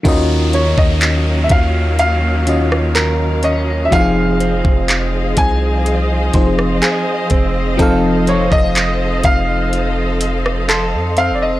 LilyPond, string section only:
\new Staff \with { instrumentName = "String section" } { \time 4/4 \key ees \dorian \tempo 4 = 62 << { <ees ges bes f''>1 | <f c'' ees''>1~ | <f c'' ees''>1 | } \\ { des'1 | aes'1 | a'1 | } >> }